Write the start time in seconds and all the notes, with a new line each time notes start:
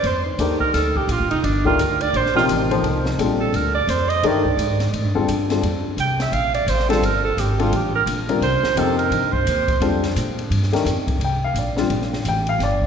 0.03 F2 C5, ride
0.25 D#4
0.38 D#2 D#3 D4 G4 A4 A#4, hi-hat pedal, ride
0.60 A#4, kick
0.73 D2 A4, snare, ride
0.96 G4, kick
1.07 A#1, hi-hat pedal, ride
1.12 F4
1.20 G1
1.31 F1 D#4, ride
1.44 G1 D4, ride
1.65 D#3 A3 D4 F4 G4 A#4, kick
1.79 D2 A#4, hi-hat pedal, ride
2.01 D5, ride
2.13 A#1 C5, ride
2.26 snare
2.35 C3 F3 A#3 D#4 F4 G4, snare
2.48 A1, hi-hat pedal, ride
2.71 F3 A#3 D#4 A4 C5, ride
2.83 C2, ride
3.05 snare
3.19 A#1 D3 G3 C4 F4 A4, hi-hat pedal, ride
3.41 A4
3.53 D2 A#4, ride
3.75 D5
3.87 F2 C5, hi-hat pedal, ride
4.09 D#5, ride
4.23 G2 D#3 A3 D4 G4 A#4 D5, ride
4.45 kick
4.57 G#2, hi-hat pedal, ride
4.80 snare, ride
4.92 A2, ride
5.04 G2
5.15 F2 D3 G3 C4 F4 A4
5.28 G2, hi-hat pedal, ride
5.50 D3 G3 C4 F4 A4, snare, ride
5.63 F2, ride
5.97 C2 G5, hi-hat pedal, ride
6.20 E5, snare, ride
6.32 A#1 F5, ride
6.54 D5, ride
6.67 A1 C5, hi-hat pedal, ride
6.79 snare
6.89 D3 G3 C4 F4 A4, snare, ride
7.02 G1 A#4, ride
7.25 A4
7.37 G#1 G4, hi-hat pedal, ride
7.59 D3 G3 C4 F4 A4, ride
7.72 A1, ride
7.76 G4
7.96 A#4
8.06 A#1, hi-hat pedal, ride
8.29 D3 G3 C4 F4 A#4, ride
8.41 C2 C5, ride
8.63 muted upright bass stroke, snare
8.76 F2 C3 F3 A#3 D#4 G4 A4, hi-hat pedal, ride
8.98 A#4, ride
9.10 G2, ride
9.33 C5, kick
9.46 D#2, hi-hat pedal, ride
9.68 kick, ride
9.80 F2 D3 G3 C4 F4 A4, ride
10.03 snare, ride
10.16 A#2, hi-hat pedal, ride
10.39 ride
10.50 G2, ride
10.63 snare
10.73 D#3 A3 D4 G4 A#4, snare, ride
10.85 F2, hi-hat pedal, ride
11.08 kick, ride
11.20 C2, ride
11.24 G5
11.44 F5
11.54 A#1 D5, hi-hat pedal, ride
11.77 D3 G3 C4 F4, snare
11.90 A#1, ride
12.02 snare
12.13 snare
12.25 A1 G5, hi-hat pedal, ride
12.47 F5, ride
12.59 G1, snare, ride
12.63 D5
12.82 kick